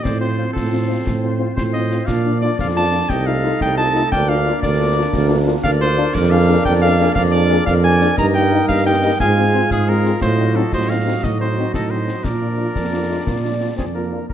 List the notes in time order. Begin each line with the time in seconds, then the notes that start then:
0.03 A2 F3 C4 F4 C5 D5, concert bass drum, snare
0.20 C4 F4 C5
0.38 C4 F4
0.53 A2 F4 A4 C5, concert bass drum, snare
0.71 C4 F4
0.88 C4 F4
1.07 A2, concert bass drum, snare
1.23 C4 F4
1.39 C4 F4
1.56 A2 F4 C5, concert bass drum, snare
1.73 C4 F4 D#5
1.91 C4 F4, snare
2.05 A#2 F3 D4 F4 D5 F5, concert bass drum, snare, crash
2.25 A#3 D4 F4
2.41 A#3 D4 F4 D5
2.59 F2 F4 D5 F5, concert bass drum, snare
2.75 A#3 D4 F4 A5
2.92 A#3 D4 F4
3.09 C2 A3 D#4 A4 D#5 G5, concert bass drum, snare
3.27 A3 D#4 F4 F5
3.43 A3 D#4 F4
3.61 C2 G5, concert bass drum, snare
3.77 A3 D#4 F4 A5
3.94 A3 D#4 F4, snare
4.12 D2 A#3 D4 A#4 D5 G5, concert bass drum, snare
4.28 A#3 D4 F4 F5
4.46 A#3 D4 F4
4.63 D2 A#4 D5, concert bass drum, snare
4.79 A#3 D4 F4
4.95 A#3 D4 F4
5.13 D2, concert bass drum, snare
5.28 A#3 D4 F4
5.45 A#3 D4 F4
5.63 D2 A#4 D5 F5, concert bass drum, snare
5.81 A#3 D4 F4 C5
5.97 A#3 D4 F4
6.14 F2 A#3 D4 A#4 D5, concert bass drum, snare, crash
6.31 A#3 D4 G#4 F5
6.47 A#3 D4 G#4
6.65 F2 G5, concert bass drum, snare
6.82 A#3 D4 G#4 F5
6.99 A#3 D4 G#4
7.15 F2 A#4 D5 F5, concert bass drum, snare
7.32 A#3 D4 G#4 D5
7.50 A#3 D4 G#4
7.66 F2 A#4 D5 F5, concert bass drum, snare
7.83 A#3 D4 G#4 G#5
8.01 A#3 D4 G#4, snare
8.17 G2 A#3 D#4 A#4 D#5 A#5, concert bass drum, snare
8.34 A#3 D#4 G4 G5
8.51 A#3 D#4 G4
8.68 G2 F5, concert bass drum, snare
8.85 A#3 D#4 G4 G5
9.03 A#3 D#4 G4
9.20 G#2 G#3 F4 G#4 F5 G#5, concert bass drum, snare
9.37 G#3 C4 F4
9.54 G#3 C4 F4
9.71 G#2 G#4 F5, concert bass drum, snare
9.88 G#3 C4 F4 A#4
10.04 G#3 C4 F4, snare
10.21 A2 F#3 F#4 C5 D#5, concert bass drum, snare, crash
10.38 F#3 C4 D#4
10.54 F#3 C4 D#4 A4
10.72 A2 F#4 C5 D#5, concert bass drum, snare
10.88 F#3 C4 D#4 F5
11.05 F#3 C4 D#4
11.23 A2 D#4 F#4 D#5, concert bass drum, snare
11.40 F#3 C4 D#4 C5
11.57 F#3 C4 D#4
11.74 A2 F#4 A4 D#5, concert bass drum, snare
11.90 F#3 C4 D#4 C5
12.07 F#3 C4 D#4, snare
12.24 A#2 F3 D4 F4 A#4 D5, concert bass drum, snare
12.41 F3 D4 F4
12.58 F3 D4 F4
12.75 F2 A#3, concert bass drum, snare
12.92 F3 D4 F4
13.09 F3 G#3 D4 F4
13.27 A#2 A#3, concert bass drum, snare
13.43 F3 D4 F4
13.60 F3 D4 F4
13.77 F2 C4 G#4, concert bass drum, snare
13.94 F3 A#3 D4 F4 A#4
14.12 F3 D4 F4
14.29 D#2 A#4, concert bass drum